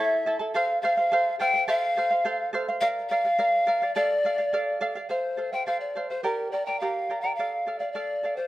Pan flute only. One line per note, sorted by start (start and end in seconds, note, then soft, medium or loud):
0.00 0.37 E5 medium
0.55 0.81 F5 loud
0.82 1.35 F5 medium
1.40 1.66 G5 loud
1.68 2.49 F5 loud
2.81 2.87 F5 loud
3.09 3.91 F5 loud
3.95 4.77 D5 loud
5.09 5.54 C5 medium
5.53 5.66 G5 medium
5.66 5.80 F5 medium
5.80 6.11 D5 medium
6.09 6.23 C5 medium
6.24 6.50 A#4 medium
6.52 6.65 D5 medium
6.66 6.79 G5 medium
6.80 7.23 F5 medium
7.21 7.35 G5 medium
7.35 7.80 F5 medium
7.79 7.92 D5 medium
7.92 8.38 D5 medium
8.36 8.47 C5 medium